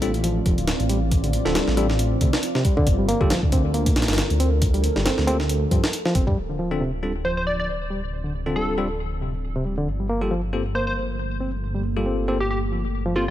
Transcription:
Already playing: A1 C4 F4 D5
0.02 G3 C4 D4 F4 A4, closed hi-hat
0.14 closed hi-hat
0.24 F3, closed hi-hat
0.46 F1, kick, closed hi-hat
0.58 D1, closed hi-hat
0.68 snare, closed hi-hat
0.80 A1, closed hi-hat
0.89 G3, closed hi-hat
1.11 kick, closed hi-hat
1.24 D3, closed hi-hat
1.33 closed hi-hat
1.45 D1 D3 C4 D4 F4 A4, snare
1.55 G3, snare, closed hi-hat
1.67 A1, snare
1.77 G3 C4 D4 F4 A4, closed hi-hat
1.90 snare
1.99 closed hi-hat
2.21 D2 C3, kick, closed hi-hat
2.33 snare
2.43 closed hi-hat
2.55 C3, snare
2.65 G3, kick, closed hi-hat
2.77 D3, kick
2.87 G1 A4 A#4, kick, closed hi-hat
2.99 G3
3.08 A#3, closed hi-hat
3.21 G1 G3 A#3 F4 G4 A4, kick
3.30 F3, snare, closed hi-hat
3.43 D2, kick
3.52 C4, kick, closed hi-hat
3.74 A#3, closed hi-hat
3.86 kick, closed hi-hat
3.96 A#1, snare, closed hi-hat
4.02 snare, closed hi-hat
4.08 G1, snare, closed hi-hat
4.13 snare, closed hi-hat
4.18 snare, closed hi-hat
4.30 D2, closed hi-hat
4.40 C4, closed hi-hat
4.62 kick, closed hi-hat
4.74 G3, closed hi-hat
4.84 closed hi-hat
4.96 G1 G3, snare
5.05 C4, snare, closed hi-hat
5.18 D2, snare
5.27 A#3 C4 F4 G4 A4, closed hi-hat
5.40 snare
5.49 closed hi-hat
5.71 G2 F3, kick, closed hi-hat
5.84 snare
5.93 closed hi-hat
6.05 F3, snare
6.15 G1 C4, kick, closed hi-hat
6.27 G2 G3, kick
6.37 D1 C4 F4 D5
6.49 D3
6.59 F3
6.71 D3 C4 D4 F4 A4
6.81 C3
7.03 G3 C4 D4 F4 A4
7.24 F3 C5
7.37 C5
7.47 D5
7.59 D5
7.90 G3
8.24 D3
8.46 D3 C4 D4 F4 A4
8.56 G3 A4
8.78 G3 C4 D4 F4 A4
9.21 C3
9.56 C3
9.65 G3
9.78 D3
9.87 G1 A#3 A4
10.00 G3
10.09 A#3
10.21 G3 A#3 F4 G4 A4
10.31 F3
10.53 A#3 C4 F4 G4 A4
10.75 A#3 C5
10.87 C5
11.41 C4
11.75 G3
11.96 G3 A#3 F4 G4 A4
12.06 C4
12.28 A#3 C4 F4 G4 A4
12.40 G4
12.50 G4
12.72 F3
13.06 F3
13.16 A#3 C4 F4 G4 A4

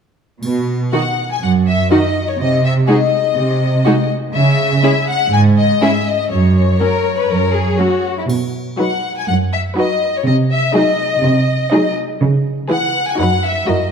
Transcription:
0.43 B2, triangle
0.92 D#3 D#4 F#4 F#5
1.30 G#5
1.41 F#2 F#5
1.67 E5
1.91 D#3 D#4 F#4 D#5
2.29 C#5
2.39 C3 D#5
2.65 E5
2.88 G#3 D#4 F#4 G#4 D#5
3.36 C3
3.85 G#3 D#4 F#4 G#4
4.34 C#3 E5
4.83 G#3 C#4 E4 G#4
5.08 F#5
5.32 G#2 G#5
5.57 D#5
5.81 G#3 C#4 E4 G#4 E5
6.07 D#5
6.31 F#2 C#5
6.80 F#3 C#4 A#4
7.19 B4
7.30 F#2 A#4
7.55 G#4
7.79 F#3 C#4 F#4
8.18 E4
8.29 B2, triangle
8.79 F#3 D#4 F#4 B4 F#5
9.17 G#5
9.27 F#2 F#5
9.53 E5
9.77 F#3 D#4 F#4 B4 D#5
10.16 C#5
10.26 C3 D#5
10.52 E5
10.75 F#3 D#4 G#4 D#5
11.23 C3
11.73 F#3 D#4 G#4 D#5
12.21 C#3
12.70 E3 E4 G#4 B4 F#5
13.08 G#5
13.18 F#2 F#3 D#4 F#4 B4 F#5
13.44 E5
13.67 F#2 F#3 E4 F#4 A#4 D#5

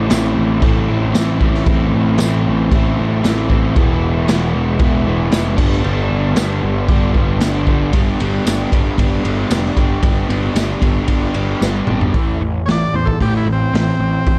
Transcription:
Already playing: A2 A3 C4 E4
0.09 A1 E3 A3 C4, snare, tambourine, crash
0.13 E4
0.38 A1
0.61 A1 A2 E3 A3 C4, kick, crash
0.66 E4
0.88 A1 A3 C4 E4
1.13 A1 E3 A3 C4 E4, snare, tambourine, crash
1.39 A3 C4 E4, kick
1.54 snare
1.66 A1 A2 E3 A3 C4 E4, kick, crash
1.94 A1
2.18 A1 E3 A3 C4, snare, tambourine, crash
2.22 E4
2.47 A1
2.71 A1 A2 E3 A3 C4, kick, crash
2.75 E4
2.97 A1 C4 E4
3.02 A3
3.23 A1 E3 A3 C4, snare, tambourine, crash
3.27 E4
3.49 A1 A3 C4 E4, kick
3.76 E1 E3 G#3 B3 E4, kick, crash
4.27 E1 E3 G#3 B3, snare, tambourine, crash
4.31 E4
4.55 E1
4.79 E1 E3 G#3 B3, kick, crash
4.84 E4
5.05 E1 B3 E4
5.09 G#3
5.31 F1 E3 G#3 B3 E4, snare, tambourine, crash
5.56 G1 G2 D3 G3 B3 D4, kick, crash
5.72 snare
5.82 G1 G2 D3 G3 B3, crash
5.86 D4
6.11 G1
6.35 G1 D3 G3 B3, snare, tambourine, crash
6.39 D4
6.63 G1
6.88 G1 G2 D3 G3 B3 D4, kick, crash
7.14 G1 G3 B3 D4, kick
7.40 G1 D3 G3 B3, snare, tambourine, crash
7.45 D4
7.67 G1 B3 D4, kick
7.71 G3
7.93 G1 G3 B3 D4 G4, kick, ride
8.19 G1 G3 B3 D4 G4, ride
8.44 G1 G3 B3 D4 G4, snare, ride, tambourine
8.71 G1 G3 B3 D4 G4, kick, ride
8.97 G1 G3 B3 D4 G4, kick, ride
9.23 G1 G3 B3 D4 G4, ride
9.50 F1 G3 B3 D4 G4, snare, ride, tambourine
9.66 snare
9.77 G1 G3 B3 D4 G4, kick, ride
10.02 G1 G3 B3 D4 G4, kick, ride
10.28 G1 G3 B3 D4 G4, ride
10.55 G1 G3 B3 D4 G4, snare, ride, tambourine
10.82 G1 G3 B3 D4 G4, kick, ride
11.07 G1 G3 B3 D4 G4, kick, ride
11.34 G1 G3 B3 D4 G4, ride
11.61 G1 G3 B3 D4 G4, snare, tambourine
11.87 G#1 G3 B3 D4 G4, mid tom
12.01 floor tom
12.14 A1 A2 E3 A3, kick, open hi-hat
12.40 A1 A2 E3
12.66 A1 A2 E3 C#5, snare, open hi-hat
12.71 D5
12.93 E2 A2 E3 C5
13.06 A4, kick
13.20 A1 A2 E3 A3 G4, kick, open hi-hat
13.37 E4
13.46 A1 A2 E3
13.52 C4
13.73 A1 A2 E3, snare, open hi-hat
13.89 snare
13.99 A1 A2 E3
14.27 A1 A2 E3, kick, open hi-hat

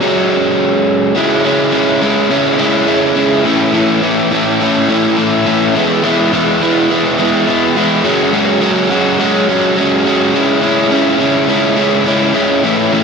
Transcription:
0.01 F#3 G#3 C#4 F#4
1.15 C#3 G#3 C#4 E4
1.44 C#3 G#3 C#4 E4
1.72 C#3 G#3 C#4 E4
2.01 C#3 G#3 C#4 E4
2.29 C#3 G#3 C#4 E4
2.58 C#3 G#3 C#4 E4
2.86 C#3 G#3 C#4 E4
3.15 C#3 G#3 C#4 E4
3.44 A2 E3 A3 C#4 E4
3.73 A2 E3 A3 C#4 E4
4.02 A2 E3 A3 C#4 E4
4.31 A2 E3 A3 C#4 E4
4.60 A2 E3 A3 C#4 E4
4.89 A2 E3 A3 C#4 E4
5.17 A2 E3 A3 C#4 E4
5.46 A2 E3 A3 C#4 E4
5.75 E3 G#3 B3 E4
6.03 E3 G#3 B3 E4
6.33 E3 G#3 B3 E4
6.62 E3 G#3 B3 E4
6.90 E3 G#3 B3 E4
7.19 E3 G#3 B3 E4
7.47 E3 G#3 B3 E4
7.76 E3 G#3 B3 E4
8.04 F#3 G#3 C#4 F#4
8.33 F#3 G#3 C#4 F#4
8.61 F#3 G#3 C#4 F#4
8.90 F#3 G#3 C#4 F#4
9.19 F#3 G#3 C#4 F#4
9.48 F#3 G#3 C#4 F#4
9.77 F#3 G#3 C#4 F#4
10.05 F#3 G#3 C#4 F#4
10.34 C#3 G#3 C#4 E4
10.62 C#3 G#3 C#4 E4
10.91 C#3 G#3 C#4 E4
11.19 C#3 G#3 C#4 E4
11.48 C#3 G#3 C#4 E4
11.76 C#3 G#3 C#4 E4
12.06 C#3 G#3 C#4 E4
12.33 C#3 G#3 C#4 E4
12.63 A2 E3 A3 C#4 E4
12.92 A2 E3 A3 C#4 E4

